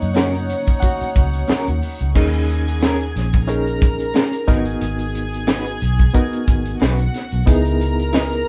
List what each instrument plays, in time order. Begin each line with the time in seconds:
Already playing: reed electric piano C#3 F#3 A#3 D#4 D#5, string section D#4 C#5 F#5
0.02 fingered electric bass F#2, closed hi-hat, shaker
0.14 clean electric guitar C#4 F#4 A#4, reed electric piano C#4 C#5, snare, shaker
0.34 closed hi-hat, shaker
0.49 closed hi-hat, shaker
0.66 kick, closed hi-hat, shaker
0.80 reed electric piano F#4 F#5, kick, closed hi-hat, shaker
1.01 muted fingered electric bass stroke, closed hi-hat, shaker
1.16 fingered electric bass C#2, kick, closed hi-hat, shaker
1.33 closed hi-hat, shaker
1.48 clean electric guitar C#4 F#4 A#4, muted fingered electric bass stroke, snare, shaker
1.67 fingered electric bass D#2, closed hi-hat, shaker
1.82 open hi-hat, shaker
1.99 fingered electric bass C#2, closed hi-hat, shaker
2.15 fingered electric bass D#2, reed electric piano C#4 D#4 G#4 A#4, string section G#4 G#5, kick, crash, shaker
2.32 closed hi-hat, shaker
2.48 closed hi-hat, shaker
2.67 closed hi-hat, shaker
2.81 clean electric guitar C#4 G#4 A#4, snare, shaker
2.99 closed hi-hat, shaker
3.16 fingered electric bass A#1, snare, closed hi-hat
3.33 kick, closed hi-hat, shaker
3.47 reed electric piano C#4 D#4 G#4 A#4, string section A#4 A#5, closed hi-hat, shaker
3.66 closed hi-hat, shaker
3.81 kick, closed hi-hat, shaker
3.99 closed hi-hat, shaker
4.14 clean electric guitar C#4 G#4 A#4, snare, shaker
4.32 closed hi-hat, shaker
4.47 fingered electric bass G#1, reed electric piano B3 D#4 F#4 A#4, string section G#4 G#5, kick, snare, closed hi-hat
4.65 closed hi-hat, shaker
4.81 fingered electric bass G#1, closed hi-hat, shaker
4.99 closed hi-hat, shaker
5.14 closed hi-hat, shaker
5.33 closed hi-hat, shaker
5.47 clean electric guitar D#4 F#4 B4, snare, shaker
5.66 closed hi-hat, shaker
5.82 fingered electric bass B1, closed hi-hat
5.98 kick, closed hi-hat, shaker
6.13 reed electric piano B3 D#4 F#4 A#4, kick, closed hi-hat, shaker
6.33 closed hi-hat, shaker
6.47 fingered electric bass G#1, kick, closed hi-hat, shaker
6.65 closed hi-hat, shaker
6.80 fingered electric bass B1, clean electric guitar D#4 F#4 B4, string section F#4 F#5, snare, shaker
6.98 closed hi-hat, shaker
7.14 snare, closed hi-hat
7.31 fingered electric bass B1, closed hi-hat, shaker
7.46 fingered electric bass C#2, reed electric piano B3 D#4 E4 G#4, string section A#4 A#5, kick, closed hi-hat, shaker
7.65 closed hi-hat, shaker
7.80 closed hi-hat, shaker
7.99 closed hi-hat, shaker
8.13 clean electric guitar E4 B4 D#5, snare, shaker
8.31 closed hi-hat, shaker